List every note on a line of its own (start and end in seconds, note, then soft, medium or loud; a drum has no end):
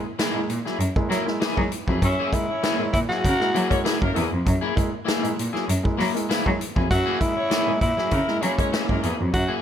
0.04 0.10 A#3 soft
0.04 0.10 E4 soft
0.04 muted clean electric guitar stroke soft
0.19 0.39 A#3 medium
0.19 0.39 E4 medium
0.19 0.39 G#4 medium
0.19 snare loud
0.19 closed hi-hat medium
0.34 0.39 A#2 soft
0.34 0.45 G#3 medium
0.34 0.45 A#3 medium
0.34 0.45 E4 medium
0.48 0.56 A#2 loud
0.48 muted clean electric guitar stroke soft
0.48 closed hi-hat medium
0.65 0.75 F#3 medium
0.65 0.79 A#3 medium
0.65 0.79 E4 medium
0.65 0.79 G#4 medium
0.65 snare soft
0.79 0.87 F#2 medium
0.79 muted clean electric guitar stroke soft
0.79 closed hi-hat medium
0.96 1.06 G#3 medium
0.96 1.06 A#3 medium
0.96 1.06 E4 medium
0.96 muted clean electric guitar stroke medium
0.96 kick medium
1.09 1.17 F#3 medium
1.09 1.22 F#3 medium
1.09 1.30 A#3 medium
1.09 1.27 E4 medium
1.09 1.27 A#4 medium
1.09 snare soft
1.09 closed hi-hat medium
1.26 1.36 G#3 medium
1.26 1.36 A#3 medium
1.26 1.36 E4 medium
1.26 muted clean electric guitar stroke soft
1.26 snare soft
1.40 1.61 A#3 medium
1.40 1.61 E4 medium
1.40 1.62 G#4 loud
1.40 snare loud
1.40 closed hi-hat medium
1.56 1.65 F#3 medium
1.56 1.67 G#3 medium
1.56 1.67 A#3 medium
1.56 1.67 E4 medium
1.56 kick medium
1.72 muted clean electric guitar stroke soft
1.72 closed hi-hat medium
1.87 1.95 F2 medium
1.87 1.98 F#3 medium
1.87 2.02 A#3 medium
1.87 2.02 E4 medium
1.87 2.02 G#4 medium
1.87 kick medium
2.02 2.10 F#2 loud
2.02 2.13 F#3 medium
2.02 2.35 C#4 loud
2.02 2.26 E4 medium
2.02 2.27 E5 loud
2.02 muted clean electric guitar stroke soft
2.02 kick medium
2.02 closed hi-hat medium
2.19 2.32 A#3 medium
2.19 2.33 E4 medium
2.19 2.33 G#4 medium
2.33 2.44 G#3 medium
2.33 2.44 A#3 medium
2.33 2.92 E4 loud
2.33 2.44 E4 loud
2.33 muted clean electric guitar stroke soft
2.33 kick medium
2.33 closed hi-hat medium
2.49 2.55 A#3 soft
2.49 2.91 C#4 loud
2.49 2.55 E4 soft
2.49 2.92 C#5 loud
2.49 muted clean electric guitar stroke soft
2.63 2.83 A#3 medium
2.63 2.83 E4 medium
2.63 2.84 G#4 loud
2.63 snare loud
2.63 closed hi-hat medium
2.79 2.84 A#2 soft
2.79 2.89 G#3 medium
2.79 2.89 A#3 medium
2.79 2.89 E4 medium
2.93 3.01 A#2 medium
2.93 3.00 E4 loud
2.93 muted clean electric guitar stroke soft
2.93 kick loud
2.93 closed hi-hat medium
3.09 3.20 F#3 medium
3.09 3.24 A#3 medium
3.09 3.24 E4 soft
3.09 3.97 F#4 loud
3.09 3.24 G#4 medium
3.09 snare soft
3.25 3.33 C#3 medium
3.25 3.38 A#3 loud
3.25 3.38 A#4 loud
3.25 muted clean electric guitar stroke soft
3.25 kick medium
3.25 closed hi-hat medium
3.40 3.50 G#3 medium
3.40 3.49 A#3 medium
3.40 3.50 A#3 medium
3.40 3.50 E4 medium
3.40 3.49 A#4 medium
3.40 muted clean electric guitar stroke soft
3.40 snare soft
3.54 3.66 F#3 medium
3.54 3.63 F#3 medium
3.54 3.74 A#3 medium
3.54 3.70 E4 medium
3.54 3.70 G#4 medium
3.54 closed hi-hat medium
3.70 3.81 G#3 medium
3.70 3.81 A#3 medium
3.70 3.79 C#4 medium
3.70 3.81 E4 medium
3.70 3.79 C#5 loud
3.70 muted clean electric guitar stroke medium
3.70 kick medium
3.70 closed hi-hat medium
3.84 3.96 A#3 medium
3.84 4.05 A#3 medium
3.84 3.96 E4 medium
3.84 4.01 E4 medium
3.84 4.00 G#4 loud
3.84 snare loud
3.84 closed hi-hat medium
4.00 4.10 F#2 medium
4.00 4.11 F#3 medium
4.00 4.26 A#3 medium
4.00 4.25 A#4 loud
4.00 muted clean electric guitar stroke soft
4.00 kick loud
4.14 4.24 E2 medium
4.14 4.26 A#3 medium
4.14 4.31 A#3 medium
4.14 4.26 E4 medium
4.14 4.31 E4 medium
4.14 4.30 G#4 medium
4.14 closed hi-hat medium
4.31 4.40 F2 loud
4.31 muted clean electric guitar stroke soft
4.45 4.54 F#2 loud
4.45 4.57 F#3 medium
4.45 muted clean electric guitar stroke soft
4.45 kick loud
4.45 closed hi-hat medium
4.61 4.74 A#3 medium
4.61 4.75 E4 medium
4.61 4.76 G#4 loud
4.76 4.87 G#3 medium
4.76 4.87 A#3 medium
4.76 4.88 E4 loud
4.76 muted clean electric guitar stroke soft
4.76 kick loud
4.76 closed hi-hat medium
4.91 4.98 A#3 soft
4.91 4.99 E4 soft
4.91 muted clean electric guitar stroke soft
5.05 5.26 A#3 medium
5.05 5.26 E4 medium
5.05 5.27 G#4 medium
5.05 snare loud
5.05 closed hi-hat medium
5.22 5.29 A#2 soft
5.22 5.32 G#3 medium
5.22 5.33 A#3 medium
5.22 5.33 E4 medium
5.22 closed hi-hat medium
5.36 5.46 A#2 medium
5.36 muted clean electric guitar stroke soft
5.36 closed hi-hat medium
5.53 5.64 F#3 medium
5.53 5.66 A#3 medium
5.53 5.67 E4 medium
5.53 5.67 G#4 medium
5.53 snare soft
5.67 5.77 F#2 loud
5.67 muted clean electric guitar stroke soft
5.67 closed hi-hat medium
5.83 5.94 G#3 medium
5.83 5.94 A#3 medium
5.83 5.94 E4 medium
5.83 muted clean electric guitar stroke soft
5.83 kick medium
5.97 6.10 F#3 medium
5.97 6.07 F#3 medium
5.97 6.18 A#3 medium
5.97 6.14 E4 medium
5.97 6.14 A#4 medium
5.97 snare soft
5.97 open hi-hat medium
6.15 6.25 G#3 medium
6.15 6.25 A#3 medium
6.15 6.25 E4 medium
6.15 muted clean electric guitar stroke medium
6.15 closed hi-hat medium
6.29 6.49 A#3 medium
6.29 6.49 E4 loud
6.29 6.50 G#4 loud
6.29 snare loud
6.29 closed hi-hat medium
6.46 6.54 F#3 loud
6.46 6.55 G#3 medium
6.46 6.56 A#3 medium
6.46 6.56 E4 medium
6.46 kick medium
6.59 muted clean electric guitar stroke soft
6.59 closed hi-hat medium
6.76 6.84 F2 medium
6.76 6.86 F#3 medium
6.76 6.89 A#3 soft
6.76 6.89 E4 medium
6.76 6.90 G#4 medium
6.76 kick medium
6.90 6.99 F#2 loud
6.90 7.02 F#3 medium
6.90 7.15 E4 loud
6.90 7.22 F#4 loud
6.90 7.15 E5 loud
6.90 muted clean electric guitar stroke soft
6.90 kick loud
6.90 closed hi-hat medium
7.06 7.20 A#3 medium
7.06 7.20 E4 medium
7.06 7.20 G#4 loud
7.20 7.31 G#3 medium
7.20 7.32 A#3 medium
7.20 7.81 E4 loud
7.20 7.32 E4 medium
7.20 muted clean electric guitar stroke soft
7.20 kick medium
7.20 closed hi-hat medium
7.36 7.42 A#3 soft
7.36 7.79 C#4 medium
7.36 7.42 E4 soft
7.36 7.79 C#5 loud
7.36 muted clean electric guitar stroke soft
7.50 7.71 A#3 medium
7.50 7.71 E4 medium
7.50 7.71 G#4 loud
7.50 snare loud
7.50 closed hi-hat medium
7.67 7.71 A#2 soft
7.67 7.77 G#3 medium
7.67 7.77 A#3 medium
7.67 7.77 E4 medium
7.81 7.90 A#2 loud
7.81 8.43 E4 loud
7.81 muted clean electric guitar stroke soft
7.81 kick medium
7.81 closed hi-hat medium
7.97 8.07 F#3 medium
7.97 8.11 A#3 medium
7.97 8.11 E4 medium
7.97 8.11 G#4 medium
7.97 snare soft
8.11 8.20 C#3 medium
8.11 8.24 A#3 medium
8.11 8.25 A#4 loud
8.11 kick medium
8.11 closed hi-hat medium
8.27 8.38 G#3 medium
8.27 8.37 A#3 medium
8.27 8.38 A#3 medium
8.27 8.39 E4 medium
8.27 8.36 A#4 medium
8.27 muted clean electric guitar stroke soft
8.27 snare soft
8.41 8.54 F#3 medium
8.41 8.50 F#3 loud
8.41 8.62 A#3 medium
8.41 9.03 C#4 medium
8.41 8.57 E4 medium
8.41 8.57 G#4 medium
8.41 closed hi-hat medium
8.58 8.68 G#3 medium
8.58 8.69 A#3 medium
8.58 8.67 C#4 medium
8.58 8.69 E4 medium
8.58 8.67 C#5 loud
8.58 muted clean electric guitar stroke medium
8.58 kick medium
8.58 closed hi-hat medium
8.72 8.93 A#3 medium
8.72 8.88 E4 medium
8.72 8.87 G#4 medium
8.72 snare loud
8.72 closed hi-hat medium
8.88 8.98 F#2 medium
8.88 8.99 G#3 medium
8.88 8.99 A#3 medium
8.88 9.14 A#3 medium
8.88 8.99 E4 medium
8.88 9.14 A#4 medium
8.88 muted clean electric guitar stroke medium
8.88 kick medium
9.02 9.12 E2 medium
9.02 9.19 A#3 medium
9.02 9.18 E4 medium
9.02 9.17 G#4 medium
9.02 closed hi-hat medium
9.19 9.28 F2 loud
9.19 9.29 F#3 medium
9.19 muted clean electric guitar stroke soft
9.32 9.42 F#2 loud
9.32 9.45 F#3 medium
9.32 9.57 F#4 loud
9.32 muted clean electric guitar stroke soft
9.32 kick loud
9.32 closed hi-hat medium
9.48 9.62 A#3 medium
9.48 9.62 E4 medium
9.48 9.62 G#4 medium
9.57 9.62 F#4 medium